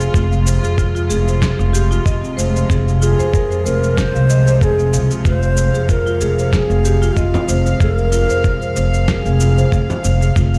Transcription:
0.00 10.59 C3 medium
0.00 10.59 F3 medium
0.00 10.59 G#3 medium
0.00 5.24 F4 medium
0.00 0.13 G#4 medium
0.00 shaker soft
0.14 0.57 F1 loud
0.14 0.31 F4 medium
0.14 kick loud
0.14 shaker soft
0.31 0.40 F5 medium
0.31 shaker soft
0.46 0.63 C5 medium
0.46 shaker medium
0.63 1.11 F2 medium
0.63 0.77 G#4 medium
0.63 shaker soft
0.78 0.88 F4 medium
0.78 kick loud
0.78 shaker soft
0.95 1.08 F4 loud
0.95 shaker soft
1.10 1.53 F1 medium
1.10 1.26 G#4 loud
1.10 shaker medium
1.27 1.41 C5 medium
1.27 shaker soft
1.42 1.58 G#4 loud
1.42 kick loud
1.42 snare medium
1.42 shaker soft
1.59 2.00 F1 loud
1.59 1.68 F5 medium
1.59 shaker soft
1.73 1.84 G4 loud
1.73 shaker medium
1.91 1.99 F4 loud
1.91 shaker soft
2.05 2.19 F1 medium
2.05 2.21 D#5 loud
2.05 kick loud
2.05 shaker soft
2.23 2.36 C4 medium
2.23 shaker soft
2.37 2.63 F1 medium
2.37 2.54 C5 loud
2.37 shaker medium
2.55 2.69 C5 medium
2.55 shaker soft
2.70 3.13 F1 loud
2.70 2.86 G#4 loud
2.70 kick loud
2.70 shaker soft
2.87 2.95 F5 medium
2.87 shaker soft
3.02 3.18 F4 loud
3.02 3.67 G#4 loud
3.02 shaker medium
3.19 3.67 F2 medium
3.19 3.27 C5 loud
3.19 shaker soft
3.33 3.49 A#4 medium
3.33 kick loud
3.33 shaker soft
3.51 3.64 C5 medium
3.51 shaker soft
3.65 4.09 F1 medium
3.65 4.00 A#4 loud
3.65 3.81 C5 medium
3.65 shaker medium
3.83 3.97 C5 medium
3.83 shaker soft
3.97 4.14 A#4 medium
3.97 4.64 C5 loud
3.97 kick loud
3.97 snare medium
3.97 shaker soft
4.15 4.56 C2 medium
4.15 4.23 F5 medium
4.15 shaker soft
4.29 4.46 D#5 loud
4.29 shaker medium
4.47 4.61 C5 medium
4.47 shaker soft
4.61 4.95 F1 medium
4.61 4.78 G#4 medium
4.61 5.11 G#4 loud
4.61 kick loud
4.61 shaker soft
4.78 4.92 C4 medium
4.78 shaker soft
4.93 5.07 C2 medium
4.93 5.10 F5 medium
4.93 shaker medium
5.11 5.24 F4 medium
5.11 shaker soft
5.24 5.68 F1 medium
5.24 5.41 F4 medium
5.24 5.92 C5 loud
5.24 10.59 F5 medium
5.24 kick loud
5.24 shaker soft
5.42 5.51 F5 medium
5.42 shaker soft
5.57 5.74 C5 medium
5.57 shaker medium
5.74 5.88 G#4 medium
5.74 shaker soft
5.89 5.99 F4 medium
5.89 6.54 A#4 loud
5.89 kick loud
5.89 shaker soft
6.06 6.19 F4 loud
6.06 shaker soft
6.21 6.64 F1 medium
6.21 6.37 G#4 loud
6.21 shaker medium
6.38 6.52 C5 medium
6.38 shaker soft
6.53 6.69 G#4 medium
6.53 7.20 G#4 loud
6.53 kick loud
6.53 snare medium
6.53 shaker soft
6.70 7.11 F1 loud
6.70 6.78 F5 medium
6.70 shaker soft
6.85 6.95 G4 loud
6.85 shaker medium
7.02 7.10 F4 loud
7.02 shaker soft
7.16 7.30 F1 medium
7.16 7.67 F4 loud
7.16 7.32 D#5 loud
7.16 kick loud
7.16 shaker soft
7.34 7.47 C4 medium
7.34 frame drum medium
7.34 shaker soft
7.48 7.74 F1 medium
7.48 7.64 C5 medium
7.48 shaker medium
7.66 7.80 C5 medium
7.66 shaker soft
7.80 8.23 F1 loud
7.80 7.97 G#4 loud
7.80 7.95 A4 loud
7.80 kick loud
7.80 shaker soft
7.95 8.78 A#4 loud
7.95 8.06 F5 medium
7.95 shaker soft
8.12 8.29 F4 loud
8.12 shaker medium
8.30 8.78 F2 medium
8.30 8.38 C5 loud
8.30 shaker soft
8.44 8.60 A#4 medium
8.44 kick loud
8.44 shaker soft
8.61 8.74 C5 medium
8.61 shaker soft
8.76 9.19 F1 medium
8.76 8.92 C5 loud
8.76 shaker medium
8.94 9.08 C5 medium
8.94 shaker soft
9.08 10.01 G#4 medium
9.08 9.25 A#4 medium
9.08 kick medium
9.08 snare medium
9.08 shaker soft
9.25 9.67 F1 loud
9.25 9.34 F5 medium
9.25 shaker soft
9.40 9.56 F4 medium
9.40 shaker medium
9.57 9.66 C5 loud
9.57 shaker soft
9.72 9.85 F1 medium
9.72 9.89 G#4 loud
9.72 kick loud
9.72 shaker soft
9.90 10.03 C5 medium
9.90 frame drum medium
9.90 shaker soft
10.04 10.29 F1 medium
10.04 10.21 C5 medium
10.04 shaker medium
10.21 10.34 G#4 medium
10.21 shaker soft
10.36 10.59 F1 loud
10.36 10.52 F4 medium
10.36 kick loud
10.36 shaker soft
10.53 10.59 F5 medium
10.53 shaker soft

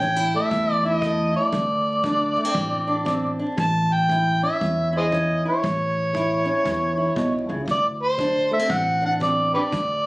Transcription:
0.00 0.30 A1 medium
0.00 0.47 E3 medium
0.00 0.16 C#4 medium
0.00 0.35 G5 loud
0.00 kick medium
0.16 0.84 E4 medium
0.34 1.03 A3 soft
0.34 0.73 E5 medium
0.50 1.33 E2 medium
0.50 0.98 A2 medium
0.50 kick medium
0.73 0.87 D5 medium
0.86 1.33 E4 medium
0.86 1.36 D#5 medium
1.02 1.50 E3 medium
1.02 2.36 A3 medium
1.02 kick medium
1.34 1.51 E4 medium
1.34 3.37 D5 medium
1.52 2.35 D2 medium
1.52 2.00 D3 medium
1.52 kick medium
2.03 2.52 F#3 medium
2.03 2.86 D4 medium
2.03 kick medium
2.37 2.45 A3 medium
2.45 3.04 C4 soft
2.54 3.37 A1 medium
2.54 3.03 A2 medium
2.54 kick medium
2.88 3.38 D4 medium
3.05 3.54 F#3 medium
3.05 3.55 C4 medium
3.05 kick medium
3.39 3.56 D4 medium
3.57 4.40 A1 medium
3.57 4.05 A2 medium
3.57 3.94 A5 loud
3.57 kick medium
3.93 4.43 G5 loud
4.09 4.57 E3 medium
4.09 4.92 E4 medium
4.09 kick medium
4.43 5.11 C#4 medium
4.43 4.91 E5 medium
4.61 5.43 E2 medium
4.61 5.08 A2 medium
4.61 kick medium
4.93 5.44 E4 medium
4.97 5.05 G#4 medium
4.97 5.03 C5 medium
4.97 5.43 D#5 medium
5.12 5.59 E3 medium
5.12 5.61 C#4 medium
5.12 kick medium
5.45 5.61 E4 medium
5.45 7.47 C#5 medium
5.62 6.45 A1 medium
5.62 6.10 A2 medium
5.62 kick medium
6.13 6.61 E3 medium
6.13 6.96 E4 medium
6.13 kick medium
6.46 7.65 C#4 medium
6.64 7.07 E2 medium
6.64 7.12 A2 medium
6.64 kick medium
6.97 7.65 E4 soft
7.16 7.46 B1 medium
7.16 7.48 B2 medium
7.16 kick medium
7.49 7.66 C#2 medium
7.49 7.65 C#3 medium
7.66 8.49 D2 medium
7.66 8.14 D3 medium
7.66 kick medium
7.71 7.85 D5 medium
8.03 8.50 C5 medium
8.18 8.66 F#3 medium
8.18 9.01 D4 medium
8.18 kick medium
8.51 8.59 A3 medium
8.51 8.73 E5 medium
8.59 9.19 C4 medium
8.67 9.52 A1 medium
8.67 9.16 A2 medium
8.67 kick medium
8.71 9.04 F#5 medium
9.02 9.54 D4 soft
9.02 9.13 F#5 medium
9.20 9.68 F#3 medium
9.20 9.70 C4 medium
9.20 9.53 D5 medium
9.20 kick medium
9.54 9.70 D4 medium
9.54 9.63 G4 medium
9.54 9.61 B4 medium
9.54 10.06 D5 medium
9.71 10.06 D2 medium
9.71 10.06 D3 medium
9.71 kick medium

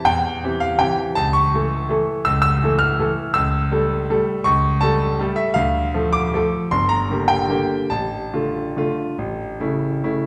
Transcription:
0.05 0.42 E2 medium
0.05 0.61 G5 loud
0.44 0.77 E3 soft
0.44 0.77 C4 medium
0.44 0.77 G4 medium
0.60 0.80 F5 medium
0.79 1.13 E3 medium
0.79 1.13 C4 medium
0.79 1.13 G4 medium
0.79 0.98 G5 medium
1.15 1.52 C#2 medium
1.15 1.34 A5 loud
1.33 2.25 C#6 loud
1.54 1.87 E3 soft
1.54 1.87 A3 medium
1.54 1.87 A4 medium
1.89 2.22 E3 medium
1.89 2.22 A3 medium
1.89 2.23 A4 medium
2.25 2.61 C#2 medium
2.25 2.40 E6 loud
2.42 2.79 E6 loud
2.63 2.96 E3 medium
2.63 2.96 A3 medium
2.63 2.96 A4 medium
2.79 3.35 F6 loud
2.99 3.32 E3 medium
2.99 3.32 A3 medium
2.99 3.33 A4 medium
3.34 3.70 C#2 medium
3.34 4.45 E6 loud
3.71 4.05 G3 medium
3.71 4.05 A3 medium
3.71 4.06 A4 medium
4.10 4.42 G3 medium
4.10 4.42 A3 medium
4.10 4.43 A4 medium
4.44 4.80 C#2 medium
4.44 4.81 C#6 loud
4.81 5.16 G3 medium
4.81 5.16 A3 medium
4.81 5.17 A4 medium
4.81 5.38 A5 loud
5.19 5.53 G3 medium
5.19 5.54 A3 medium
5.19 5.54 A4 medium
5.36 5.56 E5 medium
5.54 5.93 D2 medium
5.54 6.14 F5 loud
5.94 6.31 F3 medium
5.94 6.31 A3 medium
5.94 6.31 A4 medium
6.13 6.72 D6 loud
6.34 6.69 F3 medium
6.34 6.69 A3 medium
6.34 6.69 A4 medium
6.71 7.08 G1 medium
6.71 6.91 C6 loud
6.89 7.29 A#5 loud
7.10 7.46 D3 soft
7.10 7.46 A#3 medium
7.10 7.46 G4 medium
7.28 7.90 G5 loud
7.49 7.87 D3 medium
7.49 7.87 A#3 medium
7.49 7.87 G4 medium
7.90 8.32 A1 medium
7.90 10.24 A5 medium
8.34 8.73 D3 medium
8.34 8.73 A3 medium
8.34 8.73 F4 medium
8.77 9.15 D3 medium
8.77 9.16 A3 medium
8.77 9.16 F4 medium
9.18 9.59 A1 medium
9.60 9.99 C#3 medium
9.60 9.99 A3 medium
9.60 9.99 E4 medium
10.03 10.26 C#3 soft
10.03 10.26 A3 medium
10.03 10.26 E4 medium

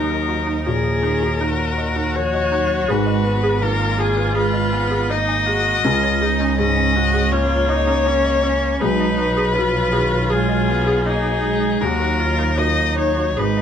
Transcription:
0.00 2.85 D#2 medium
0.00 2.91 D#2 medium
0.00 0.64 F#3 medium
0.00 0.68 D#4 medium
0.00 0.65 A#4 soft
0.10 0.21 A#4 medium
0.28 0.40 F#4 medium
0.47 0.58 D#4 medium
0.65 2.89 A#2 soft
0.65 1.02 F3 medium
0.65 0.78 F#4 medium
0.65 1.43 G#4 medium
0.65 2.17 A#4 medium
1.03 1.40 D#3 medium
1.03 1.14 D#4 medium
1.22 1.33 F#4 medium
1.41 2.17 D#3 medium
1.41 1.52 D#4 medium
1.41 3.62 F#4 medium
1.59 1.70 A#4 medium
1.78 1.89 D#5 medium
1.96 2.08 D#4 medium
2.15 2.53 F3 medium
2.15 2.26 A#4 medium
2.15 2.92 C#5 medium
2.34 2.45 D#5 medium
2.52 2.91 F#3 medium
2.52 2.63 D#4 medium
2.88 5.85 G#1 medium
2.88 5.81 G#2 medium
2.88 3.27 G#3 medium
2.88 3.00 G#4 medium
2.88 3.63 B4 medium
3.06 3.18 D#5 medium
3.25 3.64 B3 medium
3.25 3.36 B4 medium
3.43 3.55 G#4 medium
3.62 5.85 D#3 medium
3.62 4.37 A#3 medium
3.62 5.11 F4 medium
3.62 4.01 A#4 medium
3.62 3.73 B4 medium
3.98 4.10 G#4 medium
3.98 4.36 G#4 medium
4.17 4.28 B4 medium
4.35 4.74 G#3 medium
4.35 4.46 G#4 loud
4.35 5.13 B4 medium
4.54 4.65 D#5 medium
4.72 5.13 B3 medium
4.72 4.84 G#5 medium
4.91 5.02 G#4 medium
5.10 5.83 A#3 medium
5.10 5.48 D#4 medium
5.10 5.21 D#5 medium
5.10 6.58 D#5 medium
5.29 5.40 G#5 medium
5.47 5.86 F#4 medium
5.47 5.59 G#4 medium
5.84 8.83 C#2 medium
5.84 8.78 C#2 medium
5.84 7.29 G#3 medium
5.84 5.96 C#4 loud
5.84 6.24 F4 medium
6.03 6.14 C#5 medium
6.21 6.58 D#4 medium
6.21 6.33 G#4 medium
6.40 6.51 C#4 loud
6.58 8.82 G#2 medium
6.58 6.97 C#4 medium
6.58 6.70 G#4 medium
6.58 7.33 D#5 medium
6.95 7.07 C#4 medium
6.95 7.34 F#4 medium
7.14 7.25 G#4 medium
7.32 8.79 A#3 medium
7.32 7.43 C#4 loud
7.32 7.70 F4 medium
7.32 8.81 C#5 medium
7.51 7.62 C#5 medium
7.69 8.08 D#4 medium
7.69 7.80 D#5 medium
7.87 7.99 C#4 medium
8.06 8.43 C#4 medium
8.06 8.18 C#5 medium
8.25 8.36 D#5 medium
8.43 8.83 C#4 medium
8.43 8.55 C#4 medium
8.81 11.83 B1 medium
8.81 11.78 B1 medium
8.81 9.20 G#3 medium
8.81 9.56 D#4 medium
8.81 8.93 G#4 medium
8.81 10.33 B4 medium
9.00 9.11 D#5 medium
9.18 9.57 F#3 medium
9.18 9.29 B4 medium
9.37 9.48 G#4 loud
9.55 11.82 B2 medium
9.55 9.95 F3 medium
9.55 11.08 F4 medium
9.55 9.67 B4 medium
9.92 10.34 D#3 medium
9.92 10.04 G#4 loud
10.11 10.23 B4 medium
10.30 10.71 G#3 medium
10.30 10.41 G#4 loud
10.30 11.06 G#4 medium
10.49 10.60 D#5 medium
10.68 11.07 B3 medium
10.68 10.80 G#5 medium
10.87 10.98 G#4 medium
11.06 11.44 A#3 medium
11.06 11.81 D#4 medium
11.06 11.83 G#4 medium
11.06 11.17 D#5 medium
11.25 11.36 G#5 medium
11.43 11.84 G#3 medium
11.43 11.55 G#4 medium
11.81 13.39 D#2 medium
11.81 13.34 D#2 medium
11.81 12.58 F#3 medium
11.81 11.93 D#4 medium
11.81 12.21 F#4 medium
11.81 12.59 A#4 medium
12.00 12.11 A#4 medium
12.19 12.57 F4 medium
12.19 12.31 F#4 medium
12.38 12.50 D#4 loud
12.58 13.39 F#3 medium
12.58 13.36 D#4 medium
12.58 13.34 F4 soft
12.58 12.70 F#4 medium
12.58 13.35 A#4 soft
12.58 12.97 D#5 medium
12.97 13.09 D#4 loud
12.97 13.40 C#5 medium
13.17 13.29 F#4 medium
13.37 13.62 G#1 medium
13.37 13.62 G#2 medium
13.37 13.62 G#3 medium
13.37 13.62 D#4 medium
13.37 13.49 G#4 loud
13.37 13.62 B4 medium
13.57 13.62 D#5 medium

